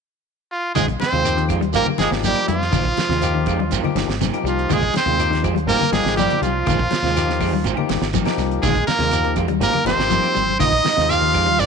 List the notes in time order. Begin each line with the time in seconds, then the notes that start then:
0.52 F4
0.75 A#1 D#3 G#3 C4 F4 G#4, muted clean electric guitar stroke, kick, closed hi-hat, low conga, claves, shekere
0.88 muted clean electric guitar stroke, kick, closed hi-hat, high conga
1.00 C4 C5, muted clean electric guitar stroke, snare, closed hi-hat, high conga, shekere
1.12 D#2 C3 G#3 C4 F4, closed hi-hat
1.23 F3 A#3 D#4 G4, muted clean electric guitar stroke, closed hi-hat, claves, shekere
1.37 D#3, muted clean electric guitar stroke, closed hi-hat
1.49 F2 D#3 G#3 C4 F4, kick, closed hi-hat, claves, shekere
1.61 D#2 G3, muted clean electric guitar stroke, closed hi-hat, high conga
1.73 G#1 D#3 F3 A#3 C4 D#4 G4 A#4, closed hi-hat, shekere
1.86 muted clean electric guitar stroke, high conga, low conga, claves
1.98 G1 D#3 F3 G#3 A#3 D#4 G4 G#4, muted clean electric guitar stroke, snare, closed hi-hat, high conga, shekere
2.11 G#1, snare
2.24 D#3 G3 A#3 G4, muted clean electric guitar stroke, closed hi-hat, high conga, shekere
2.36 closed hi-hat, claves
2.48 F2 F3 G3 F4, muted clean electric guitar stroke, closed hi-hat, high conga, shekere
2.62 snare
2.72 A#1 D#3 C4 F4, muted clean electric guitar stroke, kick, closed hi-hat, low conga, claves, shekere
2.85 muted clean electric guitar stroke, kick
2.97 muted clean electric guitar stroke, snare, closed hi-hat, high conga, shekere
3.09 D#2 C3 G#3 C4 F4, snare, closed hi-hat
3.22 F3 A#3 D#4 G4, muted clean electric guitar stroke, closed hi-hat, claves, shekere
3.34 D#3, muted clean electric guitar stroke
3.46 F2 D#3 G#3 C4 F4, kick, closed hi-hat, claves, shekere
3.59 D#2 G3, muted clean electric guitar stroke, high conga
3.71 G#1 D#3 A#3 C4 G4, closed hi-hat, shekere
3.83 F3 A#3 D#4 G4, muted clean electric guitar stroke, high conga, low conga, claves
3.95 G1 D#3, muted clean electric guitar stroke, snare, closed hi-hat, high conga, shekere
4.08 G#1, snare, closed hi-hat
4.21 C3 D#3 A#3 C4 G4, snare, closed hi-hat, high conga, shekere
4.33 F3 A#3 D#4 G4, closed hi-hat, claves
4.44 C2 F3 G3, muted clean electric guitar stroke, closed hi-hat, shekere
4.48 F4
4.59 closed hi-hat
4.69 A#1 D#3 G#3 C4 F4 G#4, kick, closed hi-hat, low conga, claves, shekere
4.82 muted clean electric guitar stroke, kick, closed hi-hat
4.93 muted clean electric guitar stroke, muted fingered electric bass stroke, snare, closed hi-hat, high conga, shekere
4.97 C4 C5
5.06 D#2 C3 G#3 C4 F4, closed hi-hat
5.19 F3 A#3 D#4 G4, muted clean electric guitar stroke, closed hi-hat, claves, shekere
5.31 D#3, muted clean electric guitar stroke, snare, closed hi-hat
5.43 F2 D#3 G#3 C4 F4, kick, closed hi-hat, claves, shekere
5.55 D#2 G3, muted clean electric guitar stroke, closed hi-hat, high conga
5.67 G#1 D#3 F3 A#3 C4 D#4 G4 A#4, muted clean electric guitar stroke, closed hi-hat, shekere
5.80 muted clean electric guitar stroke, high conga, low conga, claves
5.91 G1 F3 G3 G#3 A#3 D#4 G4 G#4, muted clean electric guitar stroke, snare, closed hi-hat, high conga, shekere
6.04 G#1, snare
6.17 D#3 F3 G3 A#3 C4 G4, closed hi-hat, high conga, shekere
6.30 closed hi-hat, low conga, claves
6.42 C2 F3 G3 F4, muted clean electric guitar stroke, closed hi-hat, high conga, shekere
6.66 A#1 D#3 G#3 C4 F4, kick, closed hi-hat, low conga, claves, shekere
6.79 muted clean electric guitar stroke, kick
6.91 muted fingered electric bass stroke, muted clean electric guitar stroke, snare, closed hi-hat, high conga, shekere
7.02 D#2 C3 G#3 C4 F4, snare, closed hi-hat
7.16 F3 A#3 D#4 G4, muted clean electric guitar stroke, snare, closed hi-hat, claves, shekere
7.28 D#3, muted clean electric guitar stroke, snare
7.40 F2 D#3 G#3 C4 F4, kick, open hi-hat, claves, shekere
7.52 D#2 G3, muted clean electric guitar stroke, high conga
7.64 G#1 D#3 A#3 C4 G4, closed hi-hat, shekere
7.77 F3 A#3 D#4 G4, muted clean electric guitar stroke, low conga, claves
7.89 G1 D#3, muted clean electric guitar stroke, snare, closed hi-hat, high conga, shekere
8.00 G#1, snare, closed hi-hat
8.13 D#3 F3 A#3 C4 G4, kick, closed hi-hat, high conga, shekere
8.25 F3 A#3 D#4 G4, snare, closed hi-hat, claves
8.38 C2 G3, muted clean electric guitar stroke, snare, closed hi-hat, shekere
8.51 closed hi-hat
8.62 A#1 D#3 G#3 C4 F4 G#4, kick, closed hi-hat, low conga, claves, shekere
8.75 muted clean electric guitar stroke, kick, closed hi-hat
8.87 A#3 A#4, muted clean electric guitar stroke, snare, closed hi-hat, high conga, shekere
8.98 D#2 C3 G#3 C4 F4, snare, closed hi-hat
9.11 F3 A#3 D#4 G4, muted clean electric guitar stroke, closed hi-hat, claves, shekere
9.24 D#3, muted clean electric guitar stroke, closed hi-hat
9.36 F2 D#3 G#3 C4 F4, kick, closed hi-hat, claves, shekere
9.47 D#2 G3, muted clean electric guitar stroke, closed hi-hat, high conga
9.60 G#1 D#3 F3 A#3 C4 D#4 G4 A#4, closed hi-hat, shekere
9.73 muted clean electric guitar stroke, high conga, low conga, claves
9.84 G1 D#3 F3 A#3 C4 D#4 G4 C5, muted clean electric guitar stroke, snare, closed hi-hat, high conga, shekere
9.97 G#1, snare
10.10 D#3 F3 A#3 C4 G4, closed hi-hat, high conga, shekere
10.23 closed hi-hat, claves
10.35 G#1 G3, muted clean electric guitar stroke, closed hi-hat, shekere
10.48 high conga
10.59 A#1 D#3 C4 D#4 F4 D#5, muted clean electric guitar stroke, kick, closed hi-hat, low conga, claves, shekere
10.72 muted clean electric guitar stroke, kick
10.84 muted clean electric guitar stroke, snare, closed hi-hat, high conga, shekere
10.97 D#2 C3 G#3 C4 F4, snare, closed hi-hat
11.09 F3 A#3 D#4 F4 G4 F5, muted clean electric guitar stroke, closed hi-hat, claves, shekere
11.21 D#3, muted clean electric guitar stroke
11.34 F2 D#3 G#3 C4 F4, kick, closed hi-hat, claves, shekere
11.46 D#2 G3, muted clean electric guitar stroke, high conga
11.59 G#1 D#3 A#3 C4 D4 G4 D5, closed hi-hat, shekere